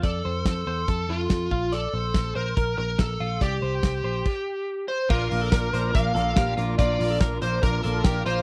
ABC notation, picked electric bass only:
X:1
M:4/4
L:1/8
Q:1/4=142
K:Bblyd
V:1 name="Picked electric bass" clef=bass
F,, F,, F,, E,, F,, F,, F,, B,,,- | B,,, B,,, B,,, B,,, B,,, B,,, B,,, B,,, | C,, C,, C,, B,,, z4 | B,,, B,,, B,,, B,,, B,,, B,,, B,,, B,,, |
B,,, B,,, B,,, B,,, B,,, B,,, B,,, B,,, |]